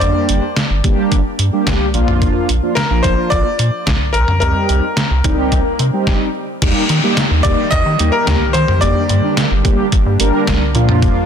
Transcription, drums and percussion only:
0.01 closed hi-hat
0.29 closed hi-hat
0.56 snare, closed hi-hat
0.84 kick, closed hi-hat
1.12 kick, closed hi-hat
1.39 closed hi-hat
1.67 snare, closed hi-hat, mid tom
1.94 closed hi-hat
2.08 mid tom
2.22 kick, closed hi-hat
2.49 closed hi-hat
2.77 snare, closed hi-hat
3.04 kick, closed hi-hat
3.32 kick, closed hi-hat
3.59 closed hi-hat
3.87 snare, closed hi-hat, mid tom
4.14 closed hi-hat
4.28 mid tom
4.42 closed hi-hat
4.69 closed hi-hat
4.97 snare, closed hi-hat
5.24 kick, closed hi-hat, mid tom
5.52 kick, closed hi-hat
5.79 closed hi-hat
6.07 kick, snare
6.62 kick, closed hi-hat, crash
6.89 closed hi-hat
7.17 snare, closed hi-hat
7.45 kick, closed hi-hat
7.72 kick, closed hi-hat
7.99 closed hi-hat
8.27 snare, closed hi-hat, mid tom
8.54 closed hi-hat
8.68 mid tom
8.82 closed hi-hat
9.09 closed hi-hat
9.37 snare, closed hi-hat
9.65 kick, closed hi-hat
9.92 kick, closed hi-hat
10.20 closed hi-hat
10.47 snare, closed hi-hat, mid tom
10.75 closed hi-hat
10.89 mid tom
11.02 kick, closed hi-hat

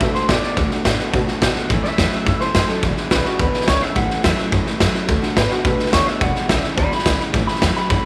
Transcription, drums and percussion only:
0.01 kick, snare
0.15 snare
0.29 kick, snare, hi-hat pedal
0.43 snare
0.57 kick, snare
0.71 snare
0.85 kick, snare, hi-hat pedal
0.99 snare
1.14 kick, snare
1.28 snare
1.42 kick, snare, hi-hat pedal
1.56 snare
1.70 kick, snare
1.85 snare
1.98 kick, snare, hi-hat pedal
2.12 snare
2.26 kick, snare
2.41 snare
2.55 kick, snare, hi-hat pedal
2.69 snare
2.83 kick, snare
2.97 snare
3.11 kick, snare, hi-hat pedal
3.25 snare
3.39 kick, snare
3.54 snare
3.61 snare
3.68 kick, snare, hi-hat pedal
3.82 snare
3.96 kick, snare
4.10 snare
4.24 kick, snare, hi-hat pedal
4.38 snare
4.52 kick, snare
4.67 snare
4.80 kick, snare, hi-hat pedal
4.95 snare
5.09 kick, snare
5.23 snare
5.37 kick, snare, hi-hat pedal
5.51 snare
5.65 kick, snare
5.79 snare
5.86 snare
5.93 kick, snare, hi-hat pedal
6.07 snare
6.21 kick, snare
6.36 snare
6.49 kick, snare, hi-hat pedal
6.64 snare
6.78 kick, snare
6.92 snare
6.99 snare
7.06 kick, snare, hi-hat pedal
7.20 snare
7.34 kick, snare
7.48 snare
7.55 snare
7.62 kick, snare, hi-hat pedal
7.76 snare
7.90 kick, snare

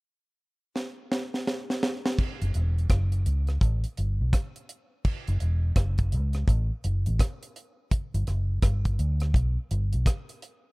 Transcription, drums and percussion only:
0.76 snare
1.12 snare
1.34 snare
1.47 snare
1.70 snare
1.83 snare
2.06 snare
2.18 kick, crash
2.42 closed hi-hat
2.54 closed hi-hat
2.78 closed hi-hat
2.90 kick, cross-stick, closed hi-hat
3.12 closed hi-hat
3.26 closed hi-hat
3.47 cross-stick, closed hi-hat
3.61 kick, closed hi-hat
3.84 closed hi-hat
3.97 closed hi-hat
4.33 kick, cross-stick, closed hi-hat
4.56 closed hi-hat
4.69 closed hi-hat
5.05 kick, crash
5.28 closed hi-hat
5.40 closed hi-hat
5.76 kick, cross-stick, closed hi-hat
5.98 kick, closed hi-hat
6.12 closed hi-hat
6.33 cross-stick, closed hi-hat
6.48 kick, closed hi-hat
6.84 closed hi-hat
7.06 closed hi-hat
7.19 kick, cross-stick, closed hi-hat
7.43 closed hi-hat
7.56 closed hi-hat
7.91 kick, closed hi-hat
8.14 closed hi-hat
8.27 cross-stick, closed hi-hat
8.62 kick, cross-stick, closed hi-hat
8.85 kick, closed hi-hat
8.99 closed hi-hat
9.20 cross-stick, closed hi-hat
9.34 kick, closed hi-hat
9.71 closed hi-hat
9.93 closed hi-hat
10.06 kick, cross-stick, closed hi-hat
10.29 closed hi-hat
10.42 closed hi-hat

